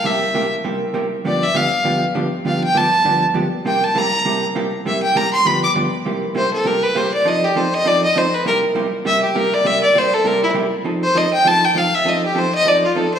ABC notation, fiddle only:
X:1
M:4/4
L:1/8
Q:"Swing" 1/4=200
K:Cmix
V:1 name="Fiddle"
e3 z4 z | d e f3 z3 | f g a3 z3 | g a b3 z3 |
e g b c' =b d' z2 | z2 c A B =B c d | _e G c e d e c =B | B z3 e G B d |
e d c A B E z2 | z c _e g a g f =e | _e G c e d F A c |]